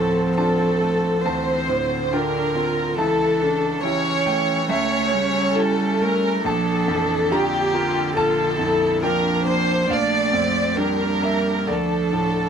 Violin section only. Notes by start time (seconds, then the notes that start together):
Already playing: A4
0.38 A4
1.25 C5
2.12 A#4
2.99 A4
3.83 C#5
4.71 C#5
5.57 A4
6.02 A#4
6.45 A4
7.31 G4
8.17 A4
9.02 A#4
9.46 C5
9.90 D5
10.78 A#4
11.68 A4